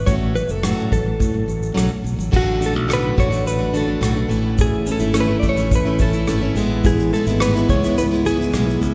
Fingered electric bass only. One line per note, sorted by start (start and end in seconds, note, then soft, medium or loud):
0.07 0.42 A1 medium
0.49 0.73 F#1 medium
0.92 1.15 A1 medium
1.20 1.43 A2 medium
1.48 1.72 A1 medium
1.77 1.88 B1 medium
2.04 2.16 B1 medium
2.19 2.30 A1 medium
2.33 2.76 A1 medium
2.76 3.10 B1 medium
3.18 3.99 A1 medium
4.01 4.25 B1 medium
4.30 4.88 A1 medium
5.00 5.35 G#1 medium
5.43 6.24 A1 medium
6.28 6.51 G#1 medium
6.55 7.14 A1 medium
7.27 7.62 G#1 medium
7.69 8.50 C#2 medium
8.54 8.77 B1 medium
8.81 8.94 C#2 medium